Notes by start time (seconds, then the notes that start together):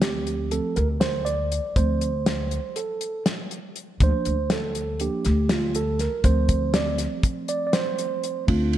Already playing: D2 F3 A3 C4
0.02 G4, snare, closed hi-hat
0.27 closed hi-hat
0.51 F3 A3 C4 A4, closed hi-hat
0.76 D2 A#4, closed hi-hat
1.00 C5, snare, closed hi-hat
1.25 D5, closed hi-hat
1.52 closed hi-hat
1.76 D2 F3 A3 C4 C5, kick, closed hi-hat
2.01 closed hi-hat
2.26 snare, closed hi-hat
2.51 closed hi-hat
2.76 A4, closed hi-hat
3.01 closed hi-hat
3.26 snare, closed hi-hat
3.51 closed hi-hat
3.76 closed hi-hat
4.00 D2 F3 A#3 D4 C5, kick, closed hi-hat
4.25 D2, closed hi-hat
4.50 A4, snare, closed hi-hat
4.75 closed hi-hat
5.00 F3 A#3 D4 G4, closed hi-hat
5.25 D2, snare, closed hi-hat
5.49 F4, snare, closed hi-hat
5.75 A4, closed hi-hat
5.99 A#4, snare, closed hi-hat
6.24 D2 F3 A3 C4 C5, kick, closed hi-hat
6.49 kick, closed hi-hat
6.74 D5, snare, closed hi-hat
6.98 snare, closed hi-hat
7.23 kick, closed hi-hat
7.48 D5, closed hi-hat
7.67 D5
7.73 C5, snare, closed hi-hat
7.98 closed hi-hat
8.23 closed hi-hat
8.47 D2 A3 C4 D4 F4, kick, ride
8.73 ride